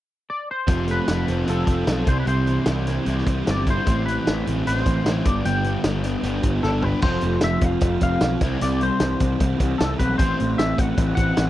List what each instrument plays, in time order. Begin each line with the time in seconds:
0.30 clean electric guitar D5
0.51 clean electric guitar C5
0.67 picked electric bass F1, distorted electric guitar F3, overdriven electric guitar C4 F4 A4, kick, closed hi-hat
0.88 distorted electric guitar A3, overdriven electric guitar F4 A4, clean electric guitar B4, closed hi-hat
1.07 picked electric bass F1, distorted electric guitar F3, overdriven electric guitar C4 F4, snare, closed hi-hat
1.12 overdriven electric guitar A4
1.28 picked electric bass F1, distorted electric guitar C4, overdriven electric guitar F4 A4, closed hi-hat
1.45 picked electric bass F1, overdriven electric guitar C4 F4 A4, distorted electric guitar F4, closed hi-hat
1.50 clean electric guitar A4
1.67 picked electric bass F1, distorted electric guitar A3, kick, closed hi-hat
1.86 picked electric bass B1, distorted electric guitar C4, overdriven electric guitar C4 F4 A4, snare, closed hi-hat
2.06 picked electric bass C2, distorted electric guitar C3, overdriven electric guitar G3 C4 E4, clean electric guitar C5, kick, closed hi-hat
2.20 clean electric guitar B4
2.25 picked electric bass C2, distorted electric guitar C3, overdriven electric guitar G3 C4 E4, clean electric guitar C5, closed hi-hat
2.46 distorted electric guitar E3, overdriven electric guitar C4 E4, closed hi-hat
2.65 picked electric bass C2, distorted electric guitar E3, overdriven electric guitar G3 C4, snare, closed hi-hat
2.70 overdriven electric guitar E4
2.87 distorted electric guitar C4, overdriven electric guitar C4 E4, snare, closed hi-hat
3.06 picked electric bass C2, overdriven electric guitar G3 C4, distorted electric guitar E4, closed hi-hat
3.10 overdriven electric guitar E4
3.18 snare
3.26 picked electric bass C2, distorted electric guitar G3, kick, closed hi-hat
3.46 picked electric bass G1, overdriven electric guitar G3 C4, distorted electric guitar C4, snare, closed hi-hat
3.50 overdriven electric guitar E4, clean electric guitar D5
3.66 overdriven electric guitar C4 E4, distorted electric guitar E4, kick, closed hi-hat
3.70 clean electric guitar C5
3.86 picked electric bass A1, distorted electric guitar A2, overdriven electric guitar E3 C4 E4, kick, closed hi-hat
4.06 distorted electric guitar E3, overdriven electric guitar E4, clean electric guitar B4, closed hi-hat
4.10 overdriven electric guitar C4
4.25 picked electric bass A1, overdriven electric guitar E3 C4 E4, distorted electric guitar E3, snare, closed hi-hat
4.46 picked electric bass A1, distorted electric guitar C4, overdriven electric guitar C4 E4, closed hi-hat
4.66 picked electric bass A1, overdriven electric guitar E3 C4 E4, distorted electric guitar E4, clean electric guitar B4, closed hi-hat
4.77 clean electric guitar C5, snare
4.86 picked electric bass A1, distorted electric guitar A3, kick, closed hi-hat
5.05 picked electric bass A1, overdriven electric guitar E3 C4, distorted electric guitar C4, snare, closed hi-hat
5.10 overdriven electric guitar E4
5.25 picked electric bass G1, distorted electric guitar G2, overdriven electric guitar B3 D4, clean electric guitar D5, kick, closed hi-hat
5.29 overdriven electric guitar G3
5.45 picked electric bass G1, distorted electric guitar G2, overdriven electric guitar G3 B3 D4, clean electric guitar G5, closed hi-hat
5.64 distorted electric guitar D3, overdriven electric guitar B3 D4, closed hi-hat
5.83 picked electric bass G1, distorted electric guitar G3, overdriven electric guitar G3 B3, snare, closed hi-hat
5.88 overdriven electric guitar D4
6.03 overdriven electric guitar B3 D4, distorted electric guitar D4, snare, closed hi-hat
6.23 picked electric bass G1, overdriven electric guitar G3 B3, distorted electric guitar G4, closed hi-hat
6.28 overdriven electric guitar D4
6.43 picked electric bass G1, distorted electric guitar B3, kick, closed hi-hat
6.62 picked electric bass G1, overdriven electric guitar G3 B3 D4, distorted electric guitar D4, clean electric guitar A4, snare
6.82 overdriven electric guitar B3 D4, distorted electric guitar G4, clean electric guitar B4, floor tom
7.02 picked electric bass F1, distorted electric guitar F2, overdriven electric guitar C4 F4 A4, clean electric guitar C5, kick, crash
7.21 picked electric bass F1, distorted electric guitar A3, overdriven electric guitar C4 F4, closed hi-hat
7.41 picked electric bass F1, distorted electric guitar F3, overdriven electric guitar C4 F4, clean electric guitar E5, snare, closed hi-hat
7.61 picked electric bass F1, overdriven electric guitar C4 F4, distorted electric guitar C4, clean electric guitar F5, kick, closed hi-hat
7.81 picked electric bass F1, overdriven electric guitar C4 F4, distorted electric guitar F4, kick, closed hi-hat
8.01 picked electric bass F1, distorted electric guitar C4, overdriven electric guitar C4 F4, clean electric guitar F5, kick, closed hi-hat
8.21 picked electric bass B1, distorted electric guitar F3, overdriven electric guitar C4 F4, snare, closed hi-hat
8.41 picked electric bass C2, distorted electric guitar C3, overdriven electric guitar G3 C4 E4, kick, closed hi-hat
8.61 picked electric bass C2, distorted electric guitar C3, overdriven electric guitar G3 C4 E4, clean electric guitar D5, closed hi-hat
8.81 distorted electric guitar G3, overdriven electric guitar G3 C4, clean electric guitar C5, closed hi-hat
9.00 picked electric bass C2, distorted electric guitar E3, overdriven electric guitar G3 C4, snare, closed hi-hat
9.20 picked electric bass C2, overdriven electric guitar G3 C4, distorted electric guitar C4, kick, closed hi-hat
9.40 picked electric bass C2, overdriven electric guitar G3 C4, distorted electric guitar E4, kick, closed hi-hat
9.60 picked electric bass C2, overdriven electric guitar G3 C4, distorted electric guitar C4, kick, closed hi-hat
9.78 picked electric bass C2, distorted electric guitar E3, overdriven electric guitar G3 C4, clean electric guitar A4, snare, closed hi-hat
9.99 picked electric bass B1, overdriven electric guitar G3 C4, distorted electric guitar C4, clean electric guitar B4, kick, closed hi-hat
10.18 picked electric bass A1, distorted electric guitar A2, overdriven electric guitar E3 C4 E4, clean electric guitar C5, kick, closed hi-hat
10.38 picked electric bass A1, overdriven electric guitar E3 C4, distorted electric guitar A3, closed hi-hat
10.58 picked electric bass A1, overdriven electric guitar E3 C4, distorted electric guitar E3, clean electric guitar E5, snare, closed hi-hat
10.77 picked electric bass A1, overdriven electric guitar E3 C4, distorted electric guitar C4, clean electric guitar F#5, kick, closed hi-hat
10.97 picked electric bass A1, overdriven electric guitar E3 C4, distorted electric guitar E4, kick, closed hi-hat
11.15 picked electric bass A1, overdriven electric guitar E3 C4, distorted electric guitar C4, clean electric guitar F#5, kick, closed hi-hat
11.36 picked electric bass A1, overdriven electric guitar E3 C4, distorted electric guitar E3, snare, closed hi-hat